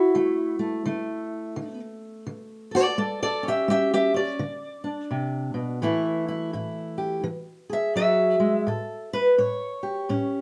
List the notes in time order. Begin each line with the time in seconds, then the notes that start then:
Already playing: E4 F#4
0.15 D3 A3
0.59 A3
0.86 D3 A3
1.56 D3
2.27 D3
2.71 F#4 A4
2.76 D5
2.98 A3 A4 D5
3.23 A4 D5
3.43 C#4
3.48 G4 E5
3.68 A3 G4 E5
3.94 G4 E5
4.14 C#4 D5
4.39 D3
4.84 D4
5.11 C3
5.54 B2
5.82 A2 E3 A3 E4
6.28 E4
6.53 A2 E4
6.98 G4
7.24 E3
7.70 G#4 E5
7.96 F#3 E5
8.40 G#3
8.67 A2 A4
9.13 B4
9.38 A2 C#5
9.83 G4
10.09 A2 C#4